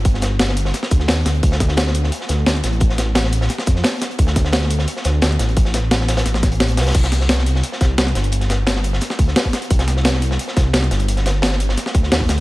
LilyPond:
<<
  \new Staff \with { instrumentName = "Detuned saw bass" } { \clef bass \time 4/4 \key c \dorian \tempo 4 = 174 g,,2 r8 d,8 ees,8 d,8 | d,2 r8 d,8 d,8 a,,8~ | a,,2 r8 f,8 r4 | d,2 r8 d,8 d,8 a,,8~ |
a,,2 a,,4. c,8 | c,2 r8 c,8 c,8 g,,8~ | g,,2 r8 d,8 r4 | c,2 r8 c,8 c,8 g,,8~ |
g,,2 r8 d,8 ees,8 d,8 | }
  \new DrumStaff \with { instrumentName = "Drums" } \drummode { \time 4/4 <hh bd>16 sn16 <hh sn>8 <hh sn>16 sn16 hh16 sn16 <hh sn>16 sn16 <hh bd>16 sn16 <hh hho sn>8 <hh sn>16 hh16 | <hh bd>16 sn16 <hh bd sn>16 sn16 <hh sn>16 sn16 hh16 sn16 hh16 sn16 <hh sn>8 <hh sn>16 sn16 <hh sn>16 hh16 | <hh bd>16 sn16 <hh sn>8 <hh sn>16 sn16 hh16 sn16 <hh sn>16 sn16 <hh bd>16 sn16 <hh hho sn>8 <hh sn>16 hh16 | <hh bd>16 sn16 <hh bd sn>16 sn16 <hh sn>16 sn16 hh16 sn16 hh16 sn16 <hh sn>8 <hh sn>16 sn16 <hh sn>16 hh16 |
<hh bd>16 sn16 <hh sn>8 <hh sn>16 sn16 <hh sn>16 <hh sn>16 <hh sn>16 sn16 <hh bd sn>16 hh16 <hh sn>16 hh16 <hh sn>32 <hh sn>32 <hh sn>32 <hh sn>32 | <cymc hh bd>16 <hh sn>16 <hh sn>16 sn16 <hh sn>16 sn16 hh16 sn16 hh16 sn16 <hh bd sn>8 <hh sn>16 sn16 <hh sn>16 hh16 | hh16 <hh sn>16 <hh sn>8 <hh sn>16 sn16 hh16 sn16 <hh sn>16 sn16 <hh bd>16 sn16 <hh hho sn>16 bd16 <hh sn>16 hh16 | <hh bd>16 <hh sn>16 <hh sn>16 sn16 <hh sn>16 sn16 hh16 sn16 hh16 sn16 <hh bd sn>8 <hh sn>16 sn16 <hh sn>16 hh16 |
hh16 <hh sn>16 <hh sn>8 <hh sn>16 sn16 hh16 sn16 <hh sn>16 sn16 <hh bd>16 sn16 <hh hho sn>16 bd16 <hh sn>8 | }
>>